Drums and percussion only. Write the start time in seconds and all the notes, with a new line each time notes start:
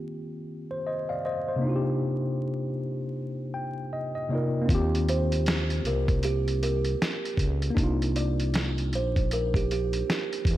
4.69 kick, closed hi-hat
4.95 closed hi-hat
5.09 closed hi-hat
5.32 closed hi-hat
5.46 snare, closed hi-hat
5.70 closed hi-hat
5.85 closed hi-hat
6.08 kick, closed hi-hat
6.23 closed hi-hat
6.48 closed hi-hat
6.63 closed hi-hat
6.85 closed hi-hat
7.02 snare, closed hi-hat
7.25 closed hi-hat
7.37 kick, closed hi-hat
7.62 closed hi-hat
7.77 kick, closed hi-hat
8.02 closed hi-hat
8.16 closed hi-hat
8.40 closed hi-hat
8.54 snare, closed hi-hat
8.78 closed hi-hat
8.93 closed hi-hat
9.16 kick, closed hi-hat
9.31 closed hi-hat
9.54 kick, closed hi-hat
9.71 closed hi-hat
9.93 closed hi-hat
10.10 snare, closed hi-hat
10.33 closed hi-hat
10.45 kick, closed hi-hat